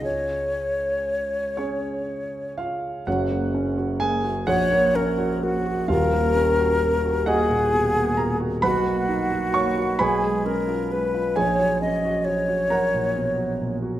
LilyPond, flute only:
\new Staff \with { instrumentName = "Flute" } { \time 6/8 \key fis \major \tempo 4. = 43 cis''2~ cis''8 r8 | r4. cis''8 ais'8 fis'8 | ais'4. gis'4. | fis'4. gis'8 ais'8 b'8 |
cis''8 dis''8 cis''4. r8 | }